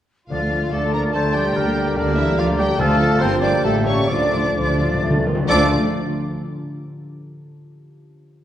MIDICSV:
0, 0, Header, 1, 13, 480
1, 0, Start_track
1, 0, Key_signature, -1, "minor"
1, 0, Tempo, 418410
1, 350, Time_signature, 3, 2, 24, 8
1, 4184, Tempo, 460829
1, 6104, Tempo, 446761
1, 9277, End_track
2, 0, Start_track
2, 0, Title_t, "Flute section"
2, 0, Program_c, 0, 73
2, 354, Note_on_c, 0, 93, 35
2, 802, Note_off_c, 0, 93, 0
2, 827, Note_on_c, 0, 93, 38
2, 1300, Note_off_c, 0, 93, 0
2, 1313, Note_on_c, 0, 93, 42
2, 1781, Note_off_c, 0, 93, 0
2, 1790, Note_on_c, 0, 82, 46
2, 2235, Note_off_c, 0, 82, 0
2, 2249, Note_on_c, 0, 82, 51
2, 3183, Note_off_c, 0, 82, 0
2, 3196, Note_on_c, 0, 93, 52
2, 3675, Note_on_c, 0, 82, 53
2, 3682, Note_off_c, 0, 93, 0
2, 4160, Note_off_c, 0, 82, 0
2, 4174, Note_on_c, 0, 82, 47
2, 4642, Note_off_c, 0, 82, 0
2, 4654, Note_on_c, 0, 93, 42
2, 5845, Note_off_c, 0, 93, 0
2, 6104, Note_on_c, 0, 81, 69
2, 6368, Note_off_c, 0, 81, 0
2, 9277, End_track
3, 0, Start_track
3, 0, Title_t, "Violin section"
3, 0, Program_c, 1, 48
3, 343, Note_on_c, 1, 77, 50
3, 796, Note_off_c, 1, 77, 0
3, 826, Note_on_c, 1, 81, 52
3, 1071, Note_on_c, 1, 82, 55
3, 1072, Note_off_c, 1, 81, 0
3, 1163, Note_off_c, 1, 82, 0
3, 1306, Note_on_c, 1, 81, 66
3, 1545, Note_off_c, 1, 81, 0
3, 1545, Note_on_c, 1, 79, 67
3, 2260, Note_off_c, 1, 79, 0
3, 2260, Note_on_c, 1, 74, 66
3, 2493, Note_on_c, 1, 76, 73
3, 2494, Note_off_c, 1, 74, 0
3, 2731, Note_on_c, 1, 77, 75
3, 2734, Note_off_c, 1, 76, 0
3, 2823, Note_off_c, 1, 77, 0
3, 2968, Note_on_c, 1, 79, 76
3, 3202, Note_off_c, 1, 79, 0
3, 3207, Note_on_c, 1, 81, 82
3, 3686, Note_on_c, 1, 84, 75
3, 3687, Note_off_c, 1, 81, 0
3, 3933, Note_off_c, 1, 84, 0
3, 3938, Note_on_c, 1, 86, 67
3, 4183, Note_on_c, 1, 81, 68
3, 4186, Note_off_c, 1, 86, 0
3, 4266, Note_off_c, 1, 81, 0
3, 4418, Note_on_c, 1, 85, 64
3, 4653, Note_off_c, 1, 85, 0
3, 4664, Note_on_c, 1, 86, 66
3, 5633, Note_off_c, 1, 86, 0
3, 6108, Note_on_c, 1, 86, 92
3, 6370, Note_off_c, 1, 86, 0
3, 9277, End_track
4, 0, Start_track
4, 0, Title_t, "Oboe"
4, 0, Program_c, 2, 68
4, 833, Note_on_c, 2, 74, 44
4, 1283, Note_off_c, 2, 74, 0
4, 1317, Note_on_c, 2, 72, 44
4, 1786, Note_on_c, 2, 70, 52
4, 1804, Note_off_c, 2, 72, 0
4, 2255, Note_off_c, 2, 70, 0
4, 2262, Note_on_c, 2, 70, 55
4, 2745, Note_on_c, 2, 74, 59
4, 2763, Note_off_c, 2, 70, 0
4, 3202, Note_off_c, 2, 74, 0
4, 3209, Note_on_c, 2, 77, 63
4, 3689, Note_on_c, 2, 79, 58
4, 3706, Note_off_c, 2, 77, 0
4, 4181, Note_off_c, 2, 79, 0
4, 4188, Note_on_c, 2, 76, 54
4, 4649, Note_off_c, 2, 76, 0
4, 4656, Note_on_c, 2, 74, 45
4, 5846, Note_off_c, 2, 74, 0
4, 6109, Note_on_c, 2, 69, 68
4, 6305, Note_off_c, 2, 69, 0
4, 9277, End_track
5, 0, Start_track
5, 0, Title_t, "Clarinet"
5, 0, Program_c, 3, 71
5, 350, Note_on_c, 3, 65, 43
5, 836, Note_on_c, 3, 69, 46
5, 853, Note_off_c, 3, 65, 0
5, 1072, Note_on_c, 3, 70, 49
5, 1089, Note_off_c, 3, 69, 0
5, 1315, Note_off_c, 3, 70, 0
5, 1327, Note_on_c, 3, 69, 48
5, 1540, Note_off_c, 3, 69, 0
5, 1547, Note_on_c, 3, 67, 61
5, 2246, Note_off_c, 3, 67, 0
5, 2259, Note_on_c, 3, 62, 59
5, 2367, Note_off_c, 3, 62, 0
5, 2493, Note_on_c, 3, 64, 58
5, 2601, Note_off_c, 3, 64, 0
5, 2735, Note_on_c, 3, 65, 61
5, 2842, Note_off_c, 3, 65, 0
5, 2964, Note_on_c, 3, 67, 67
5, 3072, Note_off_c, 3, 67, 0
5, 3201, Note_on_c, 3, 69, 72
5, 3664, Note_off_c, 3, 69, 0
5, 3671, Note_on_c, 3, 72, 71
5, 3922, Note_on_c, 3, 74, 59
5, 3939, Note_off_c, 3, 72, 0
5, 4178, Note_off_c, 3, 74, 0
5, 4183, Note_on_c, 3, 69, 56
5, 4414, Note_on_c, 3, 73, 56
5, 4429, Note_off_c, 3, 69, 0
5, 4648, Note_on_c, 3, 74, 57
5, 4664, Note_off_c, 3, 73, 0
5, 5625, Note_off_c, 3, 74, 0
5, 6109, Note_on_c, 3, 74, 75
5, 6305, Note_off_c, 3, 74, 0
5, 9277, End_track
6, 0, Start_track
6, 0, Title_t, "Violin section"
6, 0, Program_c, 4, 48
6, 345, Note_on_c, 4, 65, 42
6, 797, Note_off_c, 4, 65, 0
6, 827, Note_on_c, 4, 69, 49
6, 1071, Note_on_c, 4, 70, 47
6, 1073, Note_off_c, 4, 69, 0
6, 1163, Note_off_c, 4, 70, 0
6, 1308, Note_on_c, 4, 69, 53
6, 1399, Note_off_c, 4, 69, 0
6, 1549, Note_on_c, 4, 67, 54
6, 2247, Note_off_c, 4, 67, 0
6, 2270, Note_on_c, 4, 62, 60
6, 2496, Note_on_c, 4, 64, 62
6, 2504, Note_off_c, 4, 62, 0
6, 2735, Note_off_c, 4, 64, 0
6, 2741, Note_on_c, 4, 65, 63
6, 2971, Note_on_c, 4, 67, 59
6, 2975, Note_off_c, 4, 65, 0
6, 3199, Note_on_c, 4, 69, 68
6, 3208, Note_off_c, 4, 67, 0
6, 3674, Note_off_c, 4, 69, 0
6, 3687, Note_on_c, 4, 72, 73
6, 3933, Note_on_c, 4, 74, 62
6, 3934, Note_off_c, 4, 72, 0
6, 4176, Note_on_c, 4, 69, 59
6, 4184, Note_off_c, 4, 74, 0
6, 4408, Note_off_c, 4, 69, 0
6, 4408, Note_on_c, 4, 73, 56
6, 4647, Note_off_c, 4, 73, 0
6, 4651, Note_on_c, 4, 74, 49
6, 5626, Note_off_c, 4, 74, 0
6, 6104, Note_on_c, 4, 74, 71
6, 6368, Note_off_c, 4, 74, 0
6, 9277, End_track
7, 0, Start_track
7, 0, Title_t, "Harp"
7, 0, Program_c, 5, 46
7, 345, Note_on_c, 5, 50, 37
7, 595, Note_on_c, 5, 57, 29
7, 837, Note_on_c, 5, 69, 33
7, 1070, Note_on_c, 5, 62, 35
7, 1314, Note_on_c, 5, 74, 38
7, 1542, Note_off_c, 5, 69, 0
7, 1555, Note_on_c, 5, 69, 38
7, 1775, Note_off_c, 5, 50, 0
7, 1789, Note_on_c, 5, 50, 50
7, 1811, Note_off_c, 5, 69, 0
7, 1812, Note_off_c, 5, 57, 0
7, 2026, Note_on_c, 5, 55, 40
7, 2262, Note_on_c, 5, 70, 42
7, 2497, Note_on_c, 5, 67, 45
7, 2726, Note_off_c, 5, 74, 0
7, 2739, Note_on_c, 5, 74, 50
7, 2958, Note_off_c, 5, 67, 0
7, 2972, Note_on_c, 5, 67, 43
7, 3196, Note_off_c, 5, 50, 0
7, 3210, Note_on_c, 5, 50, 58
7, 3227, Note_off_c, 5, 55, 0
7, 3227, Note_off_c, 5, 70, 0
7, 3228, Note_off_c, 5, 67, 0
7, 3429, Note_off_c, 5, 62, 0
7, 3439, Note_on_c, 5, 62, 41
7, 3451, Note_on_c, 5, 69, 46
7, 3685, Note_on_c, 5, 43, 51
7, 3708, Note_off_c, 5, 50, 0
7, 3708, Note_off_c, 5, 69, 0
7, 3913, Note_off_c, 5, 62, 0
7, 3927, Note_on_c, 5, 62, 38
7, 3931, Note_on_c, 5, 70, 41
7, 4175, Note_on_c, 5, 45, 49
7, 4199, Note_off_c, 5, 62, 0
7, 4201, Note_off_c, 5, 43, 0
7, 4204, Note_off_c, 5, 74, 0
7, 4404, Note_off_c, 5, 70, 0
7, 4412, Note_on_c, 5, 61, 33
7, 4417, Note_on_c, 5, 70, 37
7, 4657, Note_on_c, 5, 50, 43
7, 4672, Note_off_c, 5, 45, 0
7, 4674, Note_off_c, 5, 61, 0
7, 4676, Note_off_c, 5, 70, 0
7, 4900, Note_on_c, 5, 53, 34
7, 5143, Note_on_c, 5, 69, 33
7, 5389, Note_on_c, 5, 65, 35
7, 5627, Note_on_c, 5, 74, 38
7, 5860, Note_off_c, 5, 65, 0
7, 5872, Note_on_c, 5, 65, 36
7, 6042, Note_off_c, 5, 50, 0
7, 6046, Note_on_c, 5, 50, 60
7, 6072, Note_off_c, 5, 53, 0
7, 6076, Note_on_c, 5, 53, 66
7, 6094, Note_off_c, 5, 74, 0
7, 6095, Note_off_c, 5, 69, 0
7, 6108, Note_on_c, 5, 62, 70
7, 6138, Note_on_c, 5, 69, 64
7, 6169, Note_on_c, 5, 74, 64
7, 6369, Note_off_c, 5, 50, 0
7, 6369, Note_off_c, 5, 53, 0
7, 6369, Note_off_c, 5, 74, 0
7, 6370, Note_off_c, 5, 62, 0
7, 6370, Note_off_c, 5, 69, 0
7, 7555, Note_off_c, 5, 65, 0
7, 9277, End_track
8, 0, Start_track
8, 0, Title_t, "Viola section"
8, 0, Program_c, 6, 48
8, 353, Note_on_c, 6, 53, 33
8, 354, Note_on_c, 6, 62, 35
8, 465, Note_off_c, 6, 53, 0
8, 465, Note_off_c, 6, 62, 0
8, 473, Note_on_c, 6, 57, 28
8, 473, Note_on_c, 6, 65, 27
8, 587, Note_on_c, 6, 62, 30
8, 589, Note_on_c, 6, 53, 33
8, 593, Note_off_c, 6, 65, 0
8, 594, Note_off_c, 6, 57, 0
8, 710, Note_off_c, 6, 62, 0
8, 711, Note_off_c, 6, 53, 0
8, 711, Note_on_c, 6, 57, 32
8, 711, Note_on_c, 6, 65, 32
8, 833, Note_off_c, 6, 57, 0
8, 833, Note_off_c, 6, 65, 0
8, 837, Note_on_c, 6, 62, 31
8, 839, Note_on_c, 6, 53, 35
8, 948, Note_off_c, 6, 62, 0
8, 949, Note_off_c, 6, 53, 0
8, 957, Note_on_c, 6, 57, 33
8, 957, Note_on_c, 6, 65, 33
8, 1077, Note_off_c, 6, 57, 0
8, 1077, Note_off_c, 6, 65, 0
8, 1077, Note_on_c, 6, 62, 33
8, 1078, Note_on_c, 6, 53, 33
8, 1197, Note_off_c, 6, 62, 0
8, 1198, Note_off_c, 6, 53, 0
8, 1198, Note_on_c, 6, 65, 31
8, 1201, Note_on_c, 6, 57, 34
8, 1314, Note_on_c, 6, 53, 37
8, 1318, Note_off_c, 6, 65, 0
8, 1318, Note_on_c, 6, 62, 36
8, 1319, Note_off_c, 6, 57, 0
8, 1427, Note_off_c, 6, 53, 0
8, 1429, Note_off_c, 6, 62, 0
8, 1434, Note_on_c, 6, 65, 35
8, 1435, Note_on_c, 6, 57, 34
8, 1554, Note_off_c, 6, 65, 0
8, 1555, Note_off_c, 6, 57, 0
8, 1556, Note_on_c, 6, 62, 36
8, 1557, Note_on_c, 6, 53, 35
8, 1674, Note_off_c, 6, 62, 0
8, 1674, Note_on_c, 6, 57, 39
8, 1674, Note_on_c, 6, 65, 39
8, 1675, Note_off_c, 6, 53, 0
8, 1792, Note_off_c, 6, 57, 0
8, 1793, Note_off_c, 6, 65, 0
8, 1793, Note_on_c, 6, 62, 43
8, 1796, Note_on_c, 6, 55, 44
8, 1903, Note_off_c, 6, 62, 0
8, 1904, Note_off_c, 6, 55, 0
8, 1913, Note_on_c, 6, 58, 36
8, 1913, Note_on_c, 6, 67, 36
8, 2030, Note_off_c, 6, 58, 0
8, 2030, Note_off_c, 6, 67, 0
8, 2036, Note_on_c, 6, 55, 43
8, 2036, Note_on_c, 6, 62, 43
8, 2150, Note_off_c, 6, 62, 0
8, 2151, Note_off_c, 6, 55, 0
8, 2158, Note_on_c, 6, 67, 45
8, 2159, Note_on_c, 6, 58, 44
8, 2271, Note_off_c, 6, 58, 0
8, 2271, Note_off_c, 6, 67, 0
8, 2274, Note_on_c, 6, 62, 43
8, 2276, Note_on_c, 6, 55, 43
8, 2380, Note_off_c, 6, 62, 0
8, 2381, Note_off_c, 6, 55, 0
8, 2394, Note_on_c, 6, 67, 45
8, 2397, Note_on_c, 6, 58, 47
8, 2507, Note_off_c, 6, 67, 0
8, 2508, Note_off_c, 6, 58, 0
8, 2516, Note_on_c, 6, 62, 44
8, 2517, Note_on_c, 6, 55, 43
8, 2625, Note_on_c, 6, 67, 44
8, 2627, Note_off_c, 6, 62, 0
8, 2628, Note_off_c, 6, 55, 0
8, 2630, Note_on_c, 6, 58, 44
8, 2741, Note_off_c, 6, 67, 0
8, 2743, Note_off_c, 6, 58, 0
8, 2743, Note_on_c, 6, 62, 46
8, 2745, Note_on_c, 6, 55, 45
8, 2850, Note_off_c, 6, 62, 0
8, 2852, Note_off_c, 6, 55, 0
8, 2860, Note_on_c, 6, 67, 45
8, 2863, Note_on_c, 6, 58, 44
8, 2976, Note_off_c, 6, 67, 0
8, 2976, Note_on_c, 6, 55, 45
8, 2976, Note_on_c, 6, 62, 43
8, 2977, Note_off_c, 6, 58, 0
8, 3093, Note_off_c, 6, 55, 0
8, 3093, Note_off_c, 6, 62, 0
8, 3098, Note_on_c, 6, 58, 45
8, 3100, Note_on_c, 6, 67, 44
8, 3213, Note_off_c, 6, 58, 0
8, 3214, Note_off_c, 6, 67, 0
8, 3214, Note_on_c, 6, 53, 50
8, 3214, Note_on_c, 6, 65, 53
8, 3322, Note_off_c, 6, 53, 0
8, 3322, Note_off_c, 6, 65, 0
8, 3334, Note_on_c, 6, 62, 43
8, 3335, Note_on_c, 6, 57, 42
8, 3447, Note_on_c, 6, 65, 49
8, 3449, Note_on_c, 6, 53, 47
8, 3450, Note_off_c, 6, 62, 0
8, 3451, Note_off_c, 6, 57, 0
8, 3567, Note_off_c, 6, 65, 0
8, 3568, Note_off_c, 6, 53, 0
8, 3572, Note_on_c, 6, 57, 45
8, 3573, Note_on_c, 6, 62, 45
8, 3691, Note_off_c, 6, 57, 0
8, 3691, Note_on_c, 6, 55, 44
8, 3692, Note_off_c, 6, 62, 0
8, 3695, Note_on_c, 6, 65, 45
8, 3804, Note_off_c, 6, 55, 0
8, 3806, Note_off_c, 6, 65, 0
8, 3815, Note_on_c, 6, 58, 44
8, 3816, Note_on_c, 6, 67, 43
8, 3935, Note_on_c, 6, 55, 45
8, 3936, Note_off_c, 6, 58, 0
8, 3936, Note_on_c, 6, 65, 44
8, 3937, Note_off_c, 6, 67, 0
8, 4057, Note_on_c, 6, 67, 40
8, 4059, Note_off_c, 6, 55, 0
8, 4060, Note_off_c, 6, 65, 0
8, 4060, Note_on_c, 6, 58, 39
8, 4176, Note_off_c, 6, 67, 0
8, 4185, Note_off_c, 6, 58, 0
8, 4188, Note_on_c, 6, 57, 40
8, 4189, Note_on_c, 6, 67, 41
8, 4294, Note_off_c, 6, 57, 0
8, 4294, Note_off_c, 6, 67, 0
8, 4301, Note_on_c, 6, 58, 39
8, 4303, Note_on_c, 6, 69, 39
8, 4417, Note_off_c, 6, 58, 0
8, 4418, Note_off_c, 6, 69, 0
8, 4418, Note_on_c, 6, 57, 36
8, 4419, Note_on_c, 6, 67, 35
8, 4536, Note_off_c, 6, 57, 0
8, 4537, Note_off_c, 6, 67, 0
8, 4540, Note_on_c, 6, 69, 38
8, 4541, Note_on_c, 6, 58, 35
8, 4656, Note_on_c, 6, 53, 41
8, 4659, Note_off_c, 6, 58, 0
8, 4659, Note_off_c, 6, 69, 0
8, 4659, Note_on_c, 6, 65, 38
8, 4770, Note_off_c, 6, 53, 0
8, 4772, Note_off_c, 6, 65, 0
8, 4784, Note_on_c, 6, 62, 32
8, 4786, Note_on_c, 6, 57, 32
8, 4904, Note_off_c, 6, 62, 0
8, 4905, Note_off_c, 6, 57, 0
8, 4907, Note_on_c, 6, 53, 38
8, 4907, Note_on_c, 6, 65, 37
8, 5027, Note_off_c, 6, 53, 0
8, 5027, Note_off_c, 6, 65, 0
8, 5027, Note_on_c, 6, 57, 36
8, 5027, Note_on_c, 6, 62, 37
8, 5146, Note_on_c, 6, 53, 34
8, 5146, Note_on_c, 6, 65, 36
8, 5148, Note_off_c, 6, 57, 0
8, 5148, Note_off_c, 6, 62, 0
8, 5259, Note_off_c, 6, 53, 0
8, 5259, Note_off_c, 6, 65, 0
8, 5265, Note_on_c, 6, 62, 37
8, 5267, Note_on_c, 6, 57, 35
8, 5384, Note_on_c, 6, 53, 34
8, 5384, Note_on_c, 6, 65, 34
8, 5387, Note_off_c, 6, 62, 0
8, 5388, Note_off_c, 6, 57, 0
8, 5506, Note_off_c, 6, 53, 0
8, 5507, Note_off_c, 6, 65, 0
8, 5508, Note_on_c, 6, 57, 35
8, 5509, Note_on_c, 6, 62, 34
8, 5626, Note_on_c, 6, 53, 37
8, 5628, Note_on_c, 6, 65, 36
8, 5629, Note_off_c, 6, 57, 0
8, 5629, Note_off_c, 6, 62, 0
8, 5739, Note_off_c, 6, 53, 0
8, 5740, Note_off_c, 6, 65, 0
8, 5748, Note_on_c, 6, 62, 35
8, 5749, Note_on_c, 6, 57, 36
8, 5867, Note_on_c, 6, 65, 37
8, 5869, Note_on_c, 6, 53, 36
8, 5870, Note_off_c, 6, 57, 0
8, 5870, Note_off_c, 6, 62, 0
8, 5986, Note_on_c, 6, 57, 37
8, 5987, Note_on_c, 6, 62, 37
8, 5988, Note_off_c, 6, 65, 0
8, 5990, Note_off_c, 6, 53, 0
8, 6090, Note_off_c, 6, 57, 0
8, 6100, Note_on_c, 6, 65, 70
8, 6102, Note_on_c, 6, 57, 70
8, 6105, Note_off_c, 6, 62, 0
8, 6366, Note_off_c, 6, 65, 0
8, 6367, Note_off_c, 6, 57, 0
8, 9277, End_track
9, 0, Start_track
9, 0, Title_t, "French horn section"
9, 0, Program_c, 7, 60
9, 343, Note_on_c, 7, 62, 39
9, 344, Note_on_c, 7, 57, 37
9, 1743, Note_off_c, 7, 57, 0
9, 1788, Note_on_c, 7, 58, 49
9, 3160, Note_off_c, 7, 62, 0
9, 3179, Note_off_c, 7, 58, 0
9, 3199, Note_on_c, 7, 57, 52
9, 3201, Note_on_c, 7, 65, 55
9, 3674, Note_off_c, 7, 57, 0
9, 3687, Note_on_c, 7, 58, 53
9, 4160, Note_off_c, 7, 65, 0
9, 4183, Note_on_c, 7, 67, 45
9, 4643, Note_on_c, 7, 57, 39
9, 4649, Note_on_c, 7, 65, 44
9, 4656, Note_off_c, 7, 58, 0
9, 4656, Note_off_c, 7, 67, 0
9, 5840, Note_off_c, 7, 57, 0
9, 5842, Note_off_c, 7, 65, 0
9, 6118, Note_on_c, 7, 65, 69
9, 6123, Note_on_c, 7, 57, 69
9, 6311, Note_off_c, 7, 65, 0
9, 6314, Note_off_c, 7, 57, 0
9, 9277, End_track
10, 0, Start_track
10, 0, Title_t, "Cello section"
10, 0, Program_c, 8, 48
10, 351, Note_on_c, 8, 53, 41
10, 800, Note_off_c, 8, 53, 0
10, 834, Note_on_c, 8, 57, 43
10, 1076, Note_off_c, 8, 57, 0
10, 1078, Note_on_c, 8, 58, 45
10, 1318, Note_off_c, 8, 58, 0
10, 1320, Note_on_c, 8, 57, 45
10, 1412, Note_off_c, 8, 57, 0
10, 1559, Note_on_c, 8, 55, 50
10, 2252, Note_off_c, 8, 55, 0
10, 2266, Note_on_c, 8, 50, 59
10, 2497, Note_off_c, 8, 50, 0
10, 2503, Note_on_c, 8, 52, 60
10, 2738, Note_on_c, 8, 53, 61
10, 2739, Note_off_c, 8, 52, 0
10, 2830, Note_off_c, 8, 53, 0
10, 2971, Note_on_c, 8, 55, 59
10, 3063, Note_off_c, 8, 55, 0
10, 3203, Note_on_c, 8, 57, 63
10, 3676, Note_off_c, 8, 57, 0
10, 3684, Note_on_c, 8, 60, 65
10, 3927, Note_off_c, 8, 60, 0
10, 3932, Note_on_c, 8, 62, 50
10, 4023, Note_off_c, 8, 62, 0
10, 4176, Note_on_c, 8, 57, 57
10, 4408, Note_off_c, 8, 57, 0
10, 4414, Note_on_c, 8, 61, 52
10, 4655, Note_off_c, 8, 61, 0
10, 4656, Note_on_c, 8, 62, 52
10, 5609, Note_off_c, 8, 62, 0
10, 6106, Note_on_c, 8, 62, 70
10, 6369, Note_off_c, 8, 62, 0
10, 9277, End_track
11, 0, Start_track
11, 0, Title_t, "Bassoon"
11, 0, Program_c, 10, 70
11, 350, Note_on_c, 10, 50, 35
11, 800, Note_off_c, 10, 50, 0
11, 831, Note_on_c, 10, 50, 40
11, 1306, Note_off_c, 10, 50, 0
11, 1317, Note_on_c, 10, 50, 45
11, 1782, Note_off_c, 10, 50, 0
11, 1789, Note_on_c, 10, 50, 47
11, 2254, Note_off_c, 10, 50, 0
11, 2261, Note_on_c, 10, 50, 57
11, 3206, Note_on_c, 10, 53, 56
11, 3223, Note_off_c, 10, 50, 0
11, 3677, Note_off_c, 10, 53, 0
11, 3684, Note_on_c, 10, 53, 54
11, 4177, Note_on_c, 10, 55, 54
11, 4193, Note_off_c, 10, 53, 0
11, 4653, Note_on_c, 10, 53, 45
11, 4669, Note_off_c, 10, 55, 0
11, 5097, Note_off_c, 10, 53, 0
11, 5149, Note_on_c, 10, 53, 47
11, 5596, Note_off_c, 10, 53, 0
11, 5629, Note_on_c, 10, 57, 58
11, 5866, Note_off_c, 10, 57, 0
11, 5871, Note_on_c, 10, 58, 53
11, 5977, Note_off_c, 10, 58, 0
11, 6109, Note_on_c, 10, 53, 71
11, 6305, Note_off_c, 10, 53, 0
11, 9277, End_track
12, 0, Start_track
12, 0, Title_t, "Timpani"
12, 0, Program_c, 11, 47
12, 3205, Note_on_c, 11, 50, 60
12, 3653, Note_off_c, 11, 50, 0
12, 4651, Note_on_c, 11, 50, 25
12, 4730, Note_off_c, 11, 50, 0
12, 4743, Note_on_c, 11, 50, 28
12, 4820, Note_off_c, 11, 50, 0
12, 4833, Note_on_c, 11, 50, 32
12, 4901, Note_off_c, 11, 50, 0
12, 4913, Note_on_c, 11, 50, 34
12, 4997, Note_off_c, 11, 50, 0
12, 5009, Note_on_c, 11, 50, 35
12, 5080, Note_off_c, 11, 50, 0
12, 5093, Note_on_c, 11, 50, 37
12, 5168, Note_off_c, 11, 50, 0
12, 5180, Note_on_c, 11, 50, 39
12, 5257, Note_off_c, 11, 50, 0
12, 5270, Note_on_c, 11, 50, 46
12, 5344, Note_off_c, 11, 50, 0
12, 5357, Note_on_c, 11, 50, 51
12, 5426, Note_off_c, 11, 50, 0
12, 5438, Note_on_c, 11, 50, 52
12, 5513, Note_off_c, 11, 50, 0
12, 5526, Note_on_c, 11, 50, 54
12, 5600, Note_off_c, 11, 50, 0
12, 5612, Note_on_c, 11, 50, 65
12, 5689, Note_off_c, 11, 50, 0
12, 5699, Note_on_c, 11, 50, 66
12, 5776, Note_off_c, 11, 50, 0
12, 5787, Note_on_c, 11, 50, 71
12, 5862, Note_off_c, 11, 50, 0
12, 5874, Note_on_c, 11, 50, 71
12, 5948, Note_off_c, 11, 50, 0
12, 5961, Note_on_c, 11, 50, 84
12, 6033, Note_off_c, 11, 50, 0
12, 6120, Note_on_c, 11, 50, 84
12, 6333, Note_off_c, 11, 50, 0
12, 9277, End_track
13, 0, Start_track
13, 0, Title_t, "Double bass section"
13, 0, Program_c, 12, 48
13, 351, Note_on_c, 12, 38, 43
13, 777, Note_off_c, 12, 38, 0
13, 834, Note_on_c, 12, 38, 43
13, 1261, Note_off_c, 12, 38, 0
13, 1318, Note_on_c, 12, 38, 43
13, 1737, Note_off_c, 12, 38, 0
13, 1795, Note_on_c, 12, 38, 53
13, 2211, Note_off_c, 12, 38, 0
13, 2267, Note_on_c, 12, 38, 55
13, 2683, Note_off_c, 12, 38, 0
13, 2738, Note_on_c, 12, 38, 55
13, 3154, Note_off_c, 12, 38, 0
13, 3207, Note_on_c, 12, 38, 64
13, 3630, Note_off_c, 12, 38, 0
13, 3685, Note_on_c, 12, 31, 62
13, 4123, Note_off_c, 12, 31, 0
13, 4179, Note_on_c, 12, 33, 47
13, 4597, Note_off_c, 12, 33, 0
13, 4647, Note_on_c, 12, 38, 45
13, 5085, Note_off_c, 12, 38, 0
13, 5142, Note_on_c, 12, 38, 45
13, 5570, Note_off_c, 12, 38, 0
13, 5624, Note_on_c, 12, 38, 45
13, 6049, Note_off_c, 12, 38, 0
13, 6110, Note_on_c, 12, 38, 77
13, 6371, Note_off_c, 12, 38, 0
13, 9277, End_track
0, 0, End_of_file